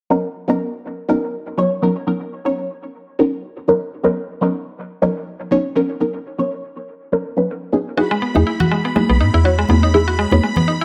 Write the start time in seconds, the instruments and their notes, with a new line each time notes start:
0.10 synth stab F#3 B3 C#4 D#4 A#4
0.48 synth stab F#3 B3 C#4 D#4 A#4
1.08 synth stab F#3 B3 C#4 D#4 A#4
1.58 synth stab F#3 B3 C#4 D#4 C#5
1.82 synth stab F#3 B3 C#4 D#4 A#4
2.07 synth stab F#3 B3 C#4 D#4 A#4
2.45 synth stab F#3 B3 C#4 D#4 C#5
3.19 synth stab F#3 B3 C#4 D#4 A#4
3.68 synth stab F#3 B3 C#4 D#4 A#4
4.03 synth stab F#3 B3 C#4 D#4 A#4
4.41 synth stab F#3 B3 C#4 D#4 A#4
5.02 synth stab F#3 B3 C#4 D#4 A#4
5.51 synth stab F#3 B3 C#4 D#4 C#5
5.75 synth stab F#3 B3 C#4 D#4 A#4
6.00 synth stab F#3 B3 C#4 D#4 A#4
6.38 synth stab F#3 B3 C#4 D#4 C#5
7.12 synth stab F#3 B3 C#4 D#4 A#4
7.37 synth stab F#3 B3 C#4 D#4 B4
7.72 synth stab F#3 B3 C#4 D#4 G#4
7.97 synth stab F#3 B3 D#4 E4 G#4, synth arpeggio sound F#4, string machine B5
8.11 synth arpeggio sound G#3
8.22 synth arpeggio sound B3
8.35 fm bass E2, synth stab F#3 B3 D#4 E4 G#4, synth arpeggio sound D#4, high conga
8.47 synth arpeggio sound E4
8.60 synth arpeggio sound F#4, low conga
8.71 synth arpeggio sound G#3
8.85 synth arpeggio sound B3
8.95 synth stab F#3 B3 D#4 E4 G#4, synth arpeggio sound G#3, high conga
9.09 fm bass B1, synth arpeggio sound B3
9.20 fm bass G#2, synth arpeggio sound D#4
9.34 fm bass E2, synth arpeggio sound E4
9.44 synth stab F#3 B3 D#4 E4 C#5, synth arpeggio sound F#4
9.59 synth arpeggio sound G#3
9.69 fm bass E2, synth stab F#3 B3 D#4 E4 G#4, synth arpeggio sound B3, high conga
9.83 synth arpeggio sound D#4
9.94 synth stab F#3 B3 D#4 E4 G#4, synth arpeggio sound E4
10.08 synth arpeggio sound F#4
10.19 synth arpeggio sound G#3
10.31 fm bass E2, synth stab F#3 B3 D#4 E4 C#5, synth arpeggio sound B3, high conga
10.43 synth arpeggio sound G#3
10.56 synth arpeggio sound B3, low conga
10.68 synth arpeggio sound D#4
10.81 synth arpeggio sound E4